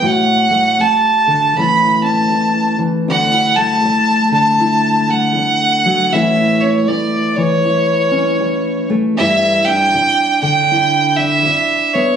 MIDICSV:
0, 0, Header, 1, 4, 480
1, 0, Start_track
1, 0, Key_signature, 2, "major"
1, 0, Tempo, 760456
1, 28, Time_signature, 4, 2, 24, 8
1, 7678, End_track
2, 0, Start_track
2, 0, Title_t, "Fiddle"
2, 0, Program_c, 0, 110
2, 39, Note_on_c, 0, 78, 100
2, 512, Note_on_c, 0, 81, 89
2, 521, Note_off_c, 0, 78, 0
2, 988, Note_on_c, 0, 83, 99
2, 997, Note_off_c, 0, 81, 0
2, 1279, Note_off_c, 0, 83, 0
2, 1283, Note_on_c, 0, 81, 99
2, 1739, Note_off_c, 0, 81, 0
2, 1955, Note_on_c, 0, 78, 109
2, 2242, Note_on_c, 0, 81, 107
2, 2252, Note_off_c, 0, 78, 0
2, 2724, Note_off_c, 0, 81, 0
2, 2733, Note_on_c, 0, 81, 96
2, 3217, Note_on_c, 0, 78, 102
2, 3226, Note_off_c, 0, 81, 0
2, 3871, Note_on_c, 0, 76, 99
2, 3880, Note_off_c, 0, 78, 0
2, 4167, Note_on_c, 0, 73, 82
2, 4177, Note_off_c, 0, 76, 0
2, 4340, Note_on_c, 0, 74, 81
2, 4349, Note_off_c, 0, 73, 0
2, 4641, Note_on_c, 0, 73, 84
2, 4651, Note_off_c, 0, 74, 0
2, 5604, Note_off_c, 0, 73, 0
2, 5788, Note_on_c, 0, 76, 108
2, 6087, Note_on_c, 0, 79, 113
2, 6097, Note_off_c, 0, 76, 0
2, 6567, Note_off_c, 0, 79, 0
2, 6573, Note_on_c, 0, 79, 103
2, 7043, Note_on_c, 0, 76, 99
2, 7053, Note_off_c, 0, 79, 0
2, 7532, Note_on_c, 0, 73, 86
2, 7542, Note_off_c, 0, 76, 0
2, 7678, Note_off_c, 0, 73, 0
2, 7678, End_track
3, 0, Start_track
3, 0, Title_t, "Steel-string acoustic guitar"
3, 0, Program_c, 1, 25
3, 14, Note_on_c, 1, 45, 72
3, 22, Note_on_c, 1, 66, 64
3, 319, Note_on_c, 1, 57, 59
3, 501, Note_off_c, 1, 45, 0
3, 803, Note_on_c, 1, 50, 61
3, 964, Note_off_c, 1, 66, 0
3, 987, Note_on_c, 1, 45, 69
3, 988, Note_off_c, 1, 50, 0
3, 991, Note_on_c, 1, 52, 59
3, 995, Note_off_c, 1, 57, 0
3, 995, Note_on_c, 1, 57, 54
3, 1001, Note_on_c, 1, 61, 57
3, 1005, Note_on_c, 1, 64, 63
3, 1282, Note_off_c, 1, 61, 0
3, 1289, Note_on_c, 1, 61, 57
3, 1457, Note_off_c, 1, 45, 0
3, 1754, Note_off_c, 1, 52, 0
3, 1757, Note_on_c, 1, 52, 59
3, 1929, Note_off_c, 1, 61, 0
3, 1943, Note_off_c, 1, 64, 0
3, 1945, Note_on_c, 1, 38, 77
3, 1945, Note_on_c, 1, 62, 69
3, 1963, Note_off_c, 1, 52, 0
3, 2093, Note_off_c, 1, 62, 0
3, 2093, Note_on_c, 1, 64, 52
3, 2252, Note_off_c, 1, 57, 0
3, 2252, Note_on_c, 1, 57, 61
3, 2418, Note_off_c, 1, 38, 0
3, 2724, Note_on_c, 1, 50, 63
3, 2896, Note_off_c, 1, 64, 0
3, 2903, Note_on_c, 1, 64, 69
3, 3199, Note_off_c, 1, 57, 0
3, 3207, Note_on_c, 1, 57, 58
3, 3694, Note_on_c, 1, 54, 57
3, 3867, Note_on_c, 1, 45, 70
3, 3868, Note_off_c, 1, 50, 0
3, 3868, Note_off_c, 1, 57, 0
3, 3872, Note_on_c, 1, 52, 61
3, 3873, Note_off_c, 1, 54, 0
3, 3876, Note_on_c, 1, 57, 63
3, 3878, Note_on_c, 1, 61, 62
3, 3881, Note_off_c, 1, 64, 0
3, 3883, Note_on_c, 1, 64, 69
3, 4170, Note_off_c, 1, 61, 0
3, 4348, Note_off_c, 1, 45, 0
3, 4651, Note_off_c, 1, 52, 0
3, 4654, Note_on_c, 1, 52, 66
3, 4826, Note_off_c, 1, 64, 0
3, 4829, Note_on_c, 1, 64, 64
3, 5123, Note_on_c, 1, 61, 58
3, 5609, Note_off_c, 1, 57, 0
3, 5616, Note_on_c, 1, 57, 62
3, 5765, Note_off_c, 1, 61, 0
3, 5772, Note_off_c, 1, 57, 0
3, 5799, Note_on_c, 1, 43, 79
3, 5805, Note_off_c, 1, 64, 0
3, 5808, Note_on_c, 1, 64, 75
3, 6106, Note_on_c, 1, 62, 60
3, 6125, Note_off_c, 1, 52, 0
3, 6264, Note_off_c, 1, 43, 0
3, 6578, Note_on_c, 1, 50, 69
3, 6761, Note_off_c, 1, 64, 0
3, 6764, Note_on_c, 1, 64, 66
3, 7055, Note_off_c, 1, 62, 0
3, 7062, Note_on_c, 1, 62, 60
3, 7227, Note_off_c, 1, 50, 0
3, 7543, Note_on_c, 1, 59, 58
3, 7678, Note_off_c, 1, 59, 0
3, 7678, Note_off_c, 1, 62, 0
3, 7678, Note_off_c, 1, 64, 0
3, 7678, End_track
4, 0, Start_track
4, 0, Title_t, "Muted steel-string acoustic guitar strokes"
4, 513, Note_on_c, 9, 29, 64
4, 577, Note_off_c, 9, 29, 0
4, 1462, Note_on_c, 9, 29, 62
4, 1525, Note_off_c, 9, 29, 0
4, 2425, Note_on_c, 9, 29, 63
4, 2488, Note_off_c, 9, 29, 0
4, 3381, Note_on_c, 9, 29, 62
4, 3444, Note_off_c, 9, 29, 0
4, 4351, Note_on_c, 9, 29, 65
4, 4414, Note_off_c, 9, 29, 0
4, 5305, Note_on_c, 9, 29, 67
4, 5368, Note_off_c, 9, 29, 0
4, 6272, Note_on_c, 9, 29, 67
4, 6335, Note_off_c, 9, 29, 0
4, 7235, Note_on_c, 9, 29, 71
4, 7298, Note_off_c, 9, 29, 0
4, 7678, End_track
0, 0, End_of_file